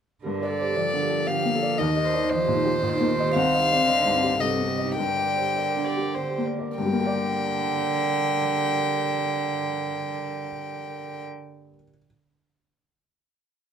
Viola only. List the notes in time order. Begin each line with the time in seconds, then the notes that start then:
0.24 A#4
0.50 A4
1.28 G4
1.55 A4
1.80 A#4
2.05 C5
4.40 A4
4.68 G4
4.96 A#4
5.56 A#4
5.85 D5
6.15 C5
6.46 A#4
6.78 A#4